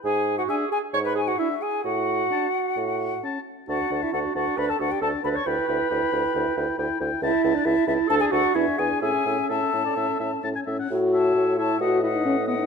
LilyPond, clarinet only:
\new Staff \with { instrumentName = "Clarinet" } { \time 4/4 \key e \dorian \tempo 4 = 134 gis'8. fis'16 gis'8 gis'8 cis''16 b'16 gis'16 fis'16 e'8 gis'8 | fis'2. r4 | fis'8. e'16 fis'8 fis'8 b'16 a'16 fis'16 g'16 a'8 b'16 cis''16 | b'2.~ b'8 r8 |
\key a \major e'8. d'16 e'8 e'8 a'16 gis'16 fis'8 e'8 gis'8 | gis'4 a'2 r4 | r8 cis''4 cis''8 b'8 b'4 b'8 | }